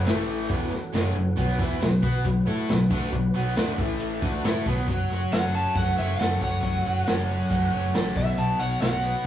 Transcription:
0.06 A1 A2 E3 A3 E4 A4 E5, snare, closed hi-hat
0.49 E1 E2 B2 E3 C#4 F#4 A4 F#5, kick, closed hi-hat
0.71 muted overdriven electric guitar stroke, muted distorted electric guitar stroke, muted fingered electric bass stroke, snare
0.93 F#1 F#2 C#3 F#3, snare, closed hi-hat
1.16 F#1 F#2 C#3
1.37 B1 B2 F#3 B3 F#4 B4 F#5, kick, closed hi-hat
1.59 E2 E3 B3 E4, kick, snare
1.81 B1 B2 F#3, snare, closed hi-hat
2.02 B2 B3 F#4 B4, kick
2.25 B1 B2 F#3, kick, closed hi-hat
2.46 A2 A3 E4 A4
2.68 B1 B2 F#3, snare, closed hi-hat
2.90 D2 D3 A3 D4, kick, snare
3.12 B1 B2 F#3, kick, closed hi-hat
3.34 B1 B2 F#3 B3
3.56 D2 D3 A3 D4, snare, closed hi-hat
3.78 A1 A2 E3 A3 E4 A4 E5, kick
4.00 closed hi-hat
4.21 D2 D3 A3 D4 F#4 B4 F#5, kick, snare
4.43 A2 A3 E4 A4, snare, closed hi-hat
4.66 B1 B2 F#3 B3, kick
4.88 F#1 F#3, kick, closed hi-hat
5.10 F#4 C#5, snare
5.31 F#1 C#4 A4 F#5, snare, closed hi-hat
5.53 F#3 C#4 A5
5.75 F#1 A3 F#4 F#5, kick, closed hi-hat
5.97 F#1 C#4 C#5 E5, snare
6.18 F#1 A3 A4 F#5, snare, closed hi-hat
6.41 F#1 F#3 C#5 F#5, kick
6.63 F#1 F#3, kick, closed hi-hat
6.85 F#1 F#4 C#5
7.07 F#1 C#4 A4, snare, closed hi-hat
7.28 F#3 C#4
7.50 F#1 A3 F#4, kick, closed hi-hat
7.71 F#1 C#4 C#5
7.94 A1 A3 A4, snare, closed hi-hat
8.16 B1 B2 E5, kick
8.37 B1 B2 A5, closed hi-hat
8.59 B1 C#5 F#5
8.80 B1 F#4 F#5, snare, closed hi-hat
9.03 B3

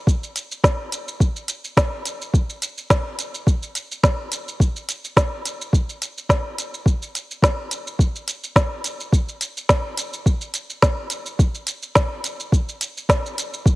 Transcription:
0.07 kick, shaker
0.23 shaker
0.36 closed hi-hat, shaker
0.52 shaker
0.64 kick, snare, shaker
0.92 closed hi-hat, shaker
1.08 shaker
1.20 kick, shaker
1.36 shaker
1.48 closed hi-hat, shaker
1.64 shaker
1.77 kick, snare, shaker
2.05 closed hi-hat, shaker
2.22 shaker
2.34 kick, shaker
2.50 shaker
2.62 closed hi-hat, shaker
2.78 shaker
2.90 kick, snare, shaker
3.19 closed hi-hat, shaker
3.34 shaker
3.47 kick, shaker
3.63 shaker
3.75 closed hi-hat, shaker
3.92 shaker
4.03 kick, snare, shaker
4.32 closed hi-hat, shaker
4.48 shaker
4.60 kick, shaker
4.76 shaker
4.89 closed hi-hat, shaker
5.05 shaker
5.17 kick, snare, shaker
5.45 closed hi-hat, shaker
5.62 shaker
5.73 kick, shaker
5.89 shaker
6.02 closed hi-hat, shaker
6.18 shaker
6.29 kick, snare, shaker
6.58 closed hi-hat, shaker
6.74 shaker
6.86 kick, shaker
7.02 shaker
7.15 closed hi-hat, shaker
7.31 shaker
7.42 kick, snare, shaker
7.71 closed hi-hat, shaker
7.87 shaker
7.99 kick, shaker
8.16 shaker
8.28 closed hi-hat, shaker
8.44 shaker
8.56 kick, snare, shaker
8.84 closed hi-hat, shaker
9.00 shaker
9.12 kick, shaker
9.29 shaker
9.41 closed hi-hat, shaker
9.57 shaker
9.69 kick, snare, shaker
9.97 closed hi-hat, shaker
10.13 shaker
10.26 kick, shaker
10.41 shaker
10.54 closed hi-hat, shaker
10.70 shaker
10.82 kick, snare, shaker
11.10 closed hi-hat, shaker
11.26 shaker
11.39 kick, shaker
11.55 shaker
11.67 closed hi-hat, shaker
11.83 shaker
11.95 kick, snare, shaker
12.24 closed hi-hat, shaker
12.40 shaker
12.52 kick, shaker
12.69 shaker
12.81 closed hi-hat, shaker
12.97 shaker
13.09 kick, snare, shaker
13.26 shaker
13.38 closed hi-hat, shaker
13.54 shaker
13.66 kick, shaker

